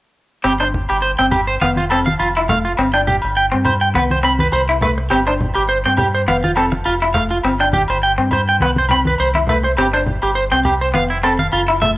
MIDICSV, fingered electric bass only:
0, 0, Header, 1, 2, 480
1, 0, Start_track
1, 0, Tempo, 583431
1, 364, Time_signature, 4, 2, 24, 8
1, 9854, End_track
2, 0, Start_track
2, 0, Title_t, "Fingered electric bass"
2, 0, Program_c, 0, 33
2, 366, Note_on_c, 0, 31, 72
2, 714, Note_off_c, 0, 31, 0
2, 742, Note_on_c, 0, 31, 77
2, 965, Note_off_c, 0, 31, 0
2, 980, Note_on_c, 0, 31, 80
2, 1308, Note_off_c, 0, 31, 0
2, 1326, Note_on_c, 0, 29, 81
2, 1778, Note_off_c, 0, 29, 0
2, 1809, Note_on_c, 0, 29, 86
2, 2260, Note_off_c, 0, 29, 0
2, 2290, Note_on_c, 0, 31, 84
2, 2636, Note_off_c, 0, 31, 0
2, 2665, Note_on_c, 0, 31, 77
2, 2886, Note_off_c, 0, 31, 0
2, 2909, Note_on_c, 0, 43, 77
2, 3233, Note_off_c, 0, 43, 0
2, 3251, Note_on_c, 0, 36, 89
2, 3701, Note_off_c, 0, 36, 0
2, 3725, Note_on_c, 0, 36, 82
2, 4178, Note_off_c, 0, 36, 0
2, 4207, Note_on_c, 0, 31, 81
2, 4554, Note_off_c, 0, 31, 0
2, 4580, Note_on_c, 0, 31, 70
2, 4804, Note_off_c, 0, 31, 0
2, 4816, Note_on_c, 0, 43, 75
2, 5146, Note_off_c, 0, 43, 0
2, 5164, Note_on_c, 0, 29, 86
2, 5617, Note_off_c, 0, 29, 0
2, 5648, Note_on_c, 0, 29, 77
2, 6099, Note_off_c, 0, 29, 0
2, 6120, Note_on_c, 0, 31, 82
2, 6471, Note_off_c, 0, 31, 0
2, 6494, Note_on_c, 0, 31, 84
2, 6721, Note_off_c, 0, 31, 0
2, 6730, Note_on_c, 0, 43, 74
2, 7063, Note_off_c, 0, 43, 0
2, 7081, Note_on_c, 0, 36, 87
2, 7536, Note_off_c, 0, 36, 0
2, 7565, Note_on_c, 0, 36, 79
2, 8018, Note_off_c, 0, 36, 0
2, 8046, Note_on_c, 0, 31, 80
2, 8394, Note_off_c, 0, 31, 0
2, 8415, Note_on_c, 0, 31, 76
2, 8641, Note_off_c, 0, 31, 0
2, 8653, Note_on_c, 0, 36, 74
2, 8985, Note_off_c, 0, 36, 0
2, 9006, Note_on_c, 0, 29, 80
2, 9459, Note_off_c, 0, 29, 0
2, 9482, Note_on_c, 0, 30, 84
2, 9854, Note_off_c, 0, 30, 0
2, 9854, End_track
0, 0, End_of_file